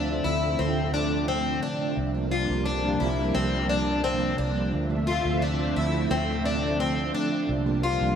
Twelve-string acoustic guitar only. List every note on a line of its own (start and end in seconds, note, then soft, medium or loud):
0.00 0.25 D4 medium
0.24 0.59 E4 medium
0.59 0.93 C4 medium
0.94 1.28 D4 medium
1.28 1.62 C4 medium
1.63 1.97 D4 medium
2.32 2.66 F4 medium
2.66 3.00 D4 medium
3.00 3.35 E4 medium
3.35 3.69 C4 medium
3.69 4.04 D4 medium
4.04 4.38 C4 medium
4.38 4.73 D4 medium
5.07 5.42 F4 medium
5.42 5.77 D4 medium
5.76 6.11 E4 medium
6.11 6.45 C4 medium
6.46 6.80 D4 medium
6.80 7.14 C4 medium
7.15 7.49 D4 medium
7.84 8.15 F4 medium